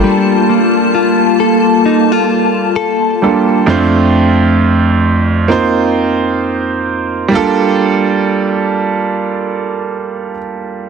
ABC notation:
X:1
M:4/4
L:1/16
Q:"Swing 16ths" 1/4=66
K:Gm
V:1 name="Analog synth pad"
[B,Fa]16 | z16 | z16 |]
V:2 name="Clean electric guitar"
G,2 B,2 F2 A2 E F3 A4 | z16 | z16 |]
V:3 name="Grand piano"
[G,B,DFA]12- [G,B,DFA]2 [G,B,DFA]2 | [F,,A,CDFc]8 [B,CEFc]8 | [G,B,DFA]16 |]